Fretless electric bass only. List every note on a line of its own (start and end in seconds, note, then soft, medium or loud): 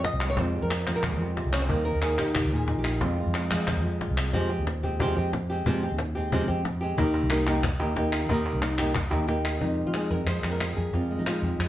0.12 0.35 C2 medium
0.37 0.60 F2 medium
0.62 0.85 F2 medium
0.87 1.13 F3 medium
1.12 1.42 F2 medium
1.45 1.67 C2 medium
1.71 1.92 D#2 medium
1.95 2.17 D#2 medium
2.19 2.45 D#3 medium
2.44 2.74 D#2 loud
2.77 2.99 A#1 medium
3.02 3.24 F2 medium
3.26 3.49 F2 medium
3.52 3.77 F3 medium
3.76 4.06 F2 medium
4.10 4.32 C2 medium
4.34 4.56 F2 medium
4.59 5.13 D#2 medium
5.17 5.62 F2 loud
5.66 5.88 F2 medium
5.92 6.45 D#2 medium
6.49 6.94 F2 medium
6.98 7.20 D#2 medium
7.22 7.76 C2 medium
7.80 8.26 D#2 loud
8.29 8.51 D#2 medium
8.53 9.07 C2 medium
9.11 9.57 D#2 loud
9.61 9.83 F2 medium
9.86 10.08 F3 medium
10.11 10.26 F2 medium
10.26 10.42 F2 medium
10.43 10.74 F2 medium
10.77 10.92 F2 medium
10.93 11.16 F2 medium
11.18 11.41 F3 medium
11.42 11.58 F2 medium
11.59 11.68 F2 medium